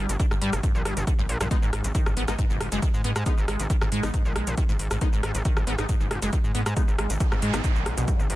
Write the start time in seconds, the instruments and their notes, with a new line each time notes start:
Already playing: acid bass G3
0.09 analog synth bass G1, acid bass G2, closed hi-hat, shaker
0.20 acid bass D3, kick, closed hi-hat, shaker
0.31 analog synth bass G1, acid bass G2, cross-stick, shaker
0.42 analog synth bass G2, acid bass G3, open hi-hat
0.53 analog synth bass G1, acid bass G2, cross-stick, closed hi-hat, shaker
0.63 acid bass G2, kick, closed hi-hat, shaker
0.75 analog synth bass A#1, shaker
0.85 analog synth bass G1, acid bass G3, cross-stick, open hi-hat
0.97 analog synth bass G1, acid bass G2, closed hi-hat, shaker
1.07 acid bass D3, kick, closed hi-hat, shaker
1.19 analog synth bass A#1, acid bass G2, shaker
1.29 analog synth bass A#1, open hi-hat
1.40 analog synth bass A#1, acid bass G2, cross-stick, closed hi-hat, shaker
1.51 synth stab G#3 B3 D#4, kick, closed hi-hat, shaker
1.62 analog synth bass G#1, acid bass G#2, shaker
1.73 analog synth bass G#1, acid bass G#2, cross-stick, open hi-hat
1.84 acid bass G#1, analog synth bass G#1, closed hi-hat, shaker
1.95 acid bass D#3, kick, closed hi-hat, shaker
2.06 analog synth bass G#1, acid bass F#2, cross-stick, shaker
2.17 analog synth bass G#1, acid bass B3, open hi-hat
2.28 analog synth bass G#1, acid bass G#2, synth stab G#3 B3 D#4, cross-stick, closed hi-hat, shaker
2.39 acid bass G#2, kick, closed hi-hat, shaker
2.50 analog synth bass F#1, acid bass G#2, shaker
2.60 analog synth bass F#1, acid bass G#2, cross-stick, open hi-hat
2.72 analog synth bass F#1, acid bass G#3, closed hi-hat, shaker
2.82 acid bass D#3, kick, closed hi-hat, shaker
2.94 analog synth bass G#2, shaker
3.04 analog synth bass G#2, acid bass B3, open hi-hat
3.16 analog synth bass G#2, cross-stick, closed hi-hat, shaker
3.26 synth stab G#3 B3 D#4, kick, closed hi-hat, shaker
3.38 analog synth bass G#1, shaker
3.48 analog synth bass G#1, acid bass G#3, cross-stick, open hi-hat
3.60 analog synth bass G#1, acid bass G#2, closed hi-hat, shaker
3.70 acid bass D#3, kick, closed hi-hat, shaker
3.81 analog synth bass G#1, acid bass G#2, cross-stick, shaker
3.92 analog synth bass G#2, acid bass G#3, open hi-hat
4.03 analog synth bass G#1, acid bass G#2, synth stab G#3 B3 D#4, cross-stick, closed hi-hat, shaker
4.14 acid bass G#2, kick, closed hi-hat, shaker
4.25 analog synth bass A#1, shaker
4.36 analog synth bass A#1, acid bass G#3, cross-stick, open hi-hat
4.47 analog synth bass A#1, acid bass G#2, closed hi-hat, shaker
4.58 acid bass D#3, kick, closed hi-hat, shaker
4.69 analog synth bass G#1, acid bass G#2, shaker
4.79 analog synth bass G#1, open hi-hat
4.91 analog synth bass G#1, acid bass G#2, cross-stick, closed hi-hat, shaker
5.01 synth stab G#3 B3 D#4, kick, closed hi-hat, shaker
5.13 analog synth bass G#1, acid bass G#2, shaker
5.23 analog synth bass G#1, acid bass G#2, cross-stick, open hi-hat
5.35 acid bass G#1, analog synth bass G#1, closed hi-hat, shaker
5.45 acid bass D#3, kick, closed hi-hat, shaker
5.57 analog synth bass G#1, acid bass F#2, cross-stick, shaker
5.67 analog synth bass G#1, acid bass B3, open hi-hat
5.79 analog synth bass G#1, acid bass G#2, synth stab G#3 B3 D#4, cross-stick, closed hi-hat, shaker
5.89 acid bass G#2, kick, closed hi-hat, shaker
6.00 analog synth bass F#1, acid bass G#2, shaker
6.11 analog synth bass F#1, acid bass G#2, cross-stick, open hi-hat
6.22 analog synth bass F#1, acid bass G#3, closed hi-hat, shaker
6.33 acid bass D#3, kick, closed hi-hat, shaker
6.44 analog synth bass G#2, shaker
6.55 analog synth bass G#2, acid bass B3, open hi-hat
6.66 analog synth bass G#2, cross-stick, closed hi-hat, shaker
6.77 synth stab G#3 B3 D#4, kick, closed hi-hat, noise sweep, shaker
6.88 analog synth bass G#1, shaker
6.98 analog synth bass G#1, acid bass G#3, cross-stick, open hi-hat
7.10 analog synth bass G#1, acid bass G#2, closed hi-hat, shaker
7.20 acid bass D#3, kick, closed hi-hat, shaker
7.32 analog synth bass G#1, acid bass G#2, cross-stick, shaker
7.42 analog synth bass G#2, acid bass G#3, open hi-hat
7.54 analog synth bass G#1, acid bass G#2, synth stab G#3 B3 D#4, cross-stick, closed hi-hat, shaker
7.64 acid bass G#2, kick, closed hi-hat, shaker
7.76 analog synth bass A#1, shaker
7.86 analog synth bass A#1, acid bass C#3, cross-stick, open hi-hat
7.97 analog synth bass A#1, acid bass B2, closed hi-hat, shaker
8.08 acid bass F#2, kick, closed hi-hat, shaker
8.19 analog synth bass G#1, acid bass D#3, shaker
8.30 analog synth bass G#1, open hi-hat